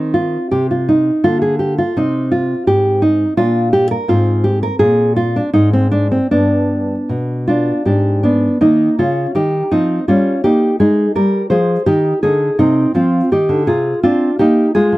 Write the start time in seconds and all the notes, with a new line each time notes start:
Already playing: D#3 C4 D#4
0.14 F4
0.51 C3 G4
0.71 F4
0.89 D#4
1.24 D3 A#3 F4
1.42 G#4
1.59 G4
1.78 F4
1.97 C3 C4 D#4
2.32 F4
2.67 G#2 G4
3.02 D#4
3.37 A#2 D4 F4
3.73 G4
3.91 A#4
4.08 G#2 C4 F4
4.44 G4
4.63 A#4
4.79 A#2 G#4
5.16 F4
5.36 D4
5.53 G#2 D#4
5.73 C4
5.92 D4
6.11 C4
6.31 G2 B3 D4
7.09 B2
7.47 D4 F4
7.85 G#2 D4 G4
8.23 B3 D4
8.61 D#3 A#3 D#4
8.99 C#3 C#4 F4
9.35 D#3 D#4 G4
9.71 F3 C4 D#4
10.08 G3 C#4 F4
10.44 A#3 D#4 G4
10.80 G#3 D#4 G#4
11.15 G3 G4 A#4
11.50 F3 G#4 C5
11.86 D#3 D#4 G4
12.23 D3 D#4 G#4
12.59 C3 C4 D#4
12.95 F3 C4 F4
13.32 D#3 D#4 G4
13.49 D3
13.67 C3 F4 G#4
14.03 C4 D4 F4
14.39 A#3 D#4 G4
14.75 G#3 F4 G#4
14.92 F3